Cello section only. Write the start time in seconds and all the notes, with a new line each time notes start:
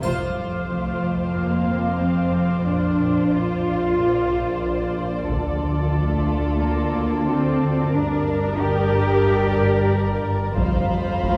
0.68 A3
1.35 A#3
2.00 C4
2.67 D4
3.32 F4
5.95 A3
6.61 A#3
7.27 C4
7.93 D4
8.59 G4
11.23 A3